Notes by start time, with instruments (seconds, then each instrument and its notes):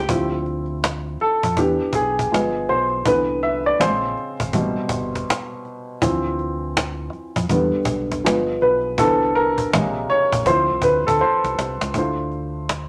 Already playing: grand piano E3 D4, nylon-string guitar G4
0.09 fingered electric bass D2, grand piano F3 C4 E4, cajon bass
0.46 cajon slap
0.84 cajon slap
1.20 grand piano A4, muted fingered electric bass stroke, cajon slap
1.43 fingered electric bass F2, cajon bass
1.57 fingered electric bass E2, grand piano E3 B3 D4 G4, cajon bass
1.93 fingered electric bass B1, grand piano G#4, cajon bass
2.19 cajon bass, cajon slap
2.31 fingered electric bass G1, grand piano F3 G#3 B3, cajon slap
2.69 fingered electric bass B1, grand piano C5, cajon slap
3.06 fingered electric bass C2, grand piano D3 E3 B3 B4, cajon bass
3.43 grand piano E5, cajon slap
3.66 grand piano D5
3.80 fingered electric bass A#1, grand piano C#3 G#3 C4 C5, cajon slap
4.17 cajon slap
4.40 fingered electric bass G#1, cajon bass
4.53 fingered electric bass A1, grand piano B2 C3 G3, cajon bass
4.78 muted fingered electric bass stroke
4.89 fingered electric bass G1, cajon bass
5.15 cajon bass, cajon slap
5.30 cajon slap
5.65 cajon slap
6.02 fingered electric bass D2, grand piano E3 F3 C4, cajon bass
6.39 cajon slap
6.77 cajon slap
7.13 muted fingered electric bass stroke, cajon slap
7.36 fingered electric bass F2, cajon bass
7.49 fingered electric bass E2, grand piano D3 G3 B3, cajon bass
7.73 muted fingered electric bass stroke
7.85 fingered electric bass B1, cajon bass
8.12 cajon bass, cajon slap
8.24 fingered electric bass G1, grand piano F3 G#3 B3, cajon slap
8.61 fingered electric bass B1, grand piano B4, cajon slap
8.98 fingered electric bass C2, grand piano D3 E3 B3 A4, cajon bass
9.35 grand piano A#4, cajon slap
9.58 cajon bass
9.73 fingered electric bass A#1, grand piano C3 C#3 G#3, cajon slap
10.10 grand piano C#5, muted fingered electric bass stroke, cajon slap
10.32 fingered electric bass A#1, cajon bass
10.46 fingered electric bass D2, grand piano F3 C4 E4 C5, cajon bass
10.70 fingered electric bass C2
10.82 fingered electric bass D2, grand piano B4, cajon bass
11.07 fingered electric bass D2, grand piano A4, cajon bass, cajon slap
11.19 grand piano C5, cajon slap
11.44 fingered electric bass C2, cajon slap
11.58 fingered electric bass C2, cajon slap
11.81 fingered electric bass C#2, cajon slap
11.94 fingered electric bass D2, grand piano A3 D4 E4 F4, cajon bass
11.98 grand piano C5
12.32 cajon slap
12.69 cajon slap